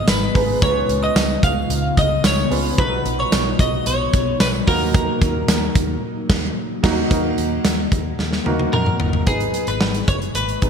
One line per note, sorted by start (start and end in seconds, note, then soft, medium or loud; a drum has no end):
0.00 0.35 G#3 medium
0.00 2.74 G#3 medium
0.00 0.35 B3 medium
0.00 4.63 B3 medium
0.00 0.35 D#4 medium
0.00 2.74 D#4 medium
0.00 0.35 G#4 medium
0.00 0.36 B4 medium
0.08 0.28 G#1 loud
0.08 0.64 B4 medium
0.08 0.59 B5 medium
0.08 snare loud
0.08 closed hi-hat medium
0.08 tambourine medium
0.35 0.55 G#1 medium
0.35 0.60 G#3 medium
0.35 0.60 B3 medium
0.35 0.60 D#4 medium
0.35 0.61 G#4 medium
0.35 0.61 B4 medium
0.35 kick medium
0.35 open hi-hat medium
0.61 0.81 C#2 loud
0.61 2.76 C#3 medium
0.61 1.63 B3 medium
0.61 1.63 C#4 medium
0.61 1.63 F4 medium
0.61 2.76 F4 medium
0.61 1.64 G#4 medium
0.61 0.69 A#4 medium
0.61 1.00 C#5 loud
0.61 1.00 C#6 medium
0.61 kick loud
0.61 closed hi-hat loud
0.69 1.67 B4 medium
0.89 1.08 C#2 loud
0.89 closed hi-hat medium
1.03 1.44 D#5 loud
1.03 1.40 D#6 medium
1.16 1.35 C#2 loud
1.16 snare loud
1.16 closed hi-hat loud
1.16 tambourine medium
1.43 1.63 C#2 loud
1.43 1.94 F5 loud
1.43 1.93 F6 medium
1.43 kick loud
1.43 closed hi-hat medium
1.70 1.90 C#2 loud
1.70 closed hi-hat medium
1.97 2.17 C#2 medium
1.97 2.25 D#5 medium
1.97 2.22 D#6 medium
1.97 kick medium
1.97 closed hi-hat medium
2.24 2.43 C#2 loud
2.24 2.79 C#5 medium
2.24 2.75 C#6 medium
2.24 snare loud
2.24 closed hi-hat loud
2.24 tambourine medium
2.50 2.71 C#2 loud
2.50 2.76 B3 medium
2.50 2.76 C#4 medium
2.50 2.76 F4 medium
2.50 2.77 G#4 medium
2.50 2.77 B4 medium
2.50 open hi-hat medium
2.78 2.98 B1 loud
2.78 3.79 F#3 medium
2.78 7.07 F#3 medium
2.78 3.79 B3 medium
2.78 3.80 D#4 medium
2.78 7.07 D#4 medium
2.78 3.80 F#4 medium
2.78 3.80 B4 medium
2.78 3.20 B4 loud
2.78 3.16 B5 medium
2.78 kick loud
2.78 closed hi-hat loud
3.06 3.25 B1 loud
3.06 closed hi-hat medium
3.19 3.60 C#5 loud
3.19 3.57 C#6 medium
3.32 3.52 B1 loud
3.32 snare loud
3.32 closed hi-hat loud
3.32 tambourine medium
3.59 3.79 B1 loud
3.59 3.87 D#5 medium
3.59 3.85 D#6 medium
3.59 kick loud
3.59 closed hi-hat medium
3.86 4.06 B1 loud
3.86 4.37 C#5 medium
3.86 4.37 C#6 medium
3.86 closed hi-hat medium
4.13 4.33 B1 loud
4.13 kick medium
4.13 closed hi-hat medium
4.40 4.60 B1 loud
4.40 4.48 B4 medium
4.40 4.52 B5 medium
4.40 snare loud
4.40 closed hi-hat loud
4.40 tambourine medium
4.67 5.06 D#2 loud
4.67 5.68 F#3 medium
4.67 5.69 A#3 medium
4.67 7.08 A#3 medium
4.67 5.69 D#4 medium
4.67 5.69 F#4 medium
4.67 6.53 A#4 medium
4.67 5.69 A#4 medium
4.67 5.98 A#5 medium
4.67 kick medium
4.67 open hi-hat medium
4.94 kick loud
4.94 closed hi-hat loud
5.22 5.41 D#2 loud
5.22 kick loud
5.22 closed hi-hat medium
5.48 5.68 D#2 loud
5.48 snare loud
5.48 closed hi-hat loud
5.48 tambourine medium
5.75 5.95 D#2 loud
5.75 kick loud
5.75 closed hi-hat loud
6.30 6.48 D#2 loud
6.30 kick loud
6.30 snare loud
6.30 crash medium
6.83 7.02 D#2 loud
6.83 7.02 F#3 loud
6.83 7.02 A#3 medium
6.83 7.02 D#4 loud
6.83 7.02 F#4 loud
6.83 7.02 A#5 loud
6.83 kick loud
6.83 snare loud
6.83 crash medium
7.10 7.30 D#2 medium
7.10 9.25 F#3 medium
7.10 8.12 A#3 medium
7.10 9.25 A#3 medium
7.10 8.12 D#4 medium
7.10 9.25 D#4 medium
7.10 8.12 F#4 medium
7.10 8.12 A#4 loud
7.10 kick loud
7.10 closed hi-hat medium
7.38 7.58 D#2 medium
7.38 closed hi-hat medium
7.65 7.85 D#2 medium
7.65 snare loud
7.65 closed hi-hat medium
7.92 8.11 D#2 medium
7.92 kick medium
7.92 closed hi-hat medium
8.19 8.38 D#2 loud
8.19 snare medium
8.33 snare medium
8.45 8.66 D#2 medium
8.45 9.21 A#3 medium
8.45 9.22 D#4 medium
8.45 9.22 F#4 medium
8.45 9.22 A#4 medium
8.45 high tom medium
8.59 high tom medium
8.73 8.93 F2 medium
8.73 9.24 A#4 medium
8.73 9.23 A#5 medium
8.73 mid tom medium
8.86 mid tom medium
9.00 9.20 G1 medium
9.00 floor tom loud
9.13 floor tom medium
9.26 9.46 G#1 loud
9.26 10.70 G#3 medium
9.26 10.28 B3 medium
9.26 10.70 B3 medium
9.26 10.28 D#4 medium
9.26 10.28 G#4 medium
9.26 9.69 G#4 medium
9.26 10.28 B4 medium
9.26 10.70 D#5 medium
9.26 9.65 G#5 medium
9.26 kick loud
9.26 closed hi-hat medium
9.40 closed hi-hat medium
9.54 closed hi-hat medium
9.67 9.77 G#1 medium
9.67 10.05 B4 medium
9.67 10.06 B5 medium
9.67 closed hi-hat soft
9.81 10.01 G#1 medium
9.81 snare loud
9.94 closed hi-hat medium
10.08 10.27 F#1 medium
10.08 10.16 C#5 medium
10.08 10.21 C#6 medium
10.08 kick medium
10.08 closed hi-hat medium
10.22 closed hi-hat soft
10.35 10.55 G#1 medium
10.35 10.70 B4 medium
10.35 10.70 B5 medium
10.35 closed hi-hat medium
10.49 closed hi-hat soft
10.62 10.70 G#1 medium
10.62 10.70 B3 medium
10.62 10.70 D#4 medium
10.62 10.70 G#4 medium
10.62 10.70 B4 medium
10.62 kick medium
10.62 closed hi-hat medium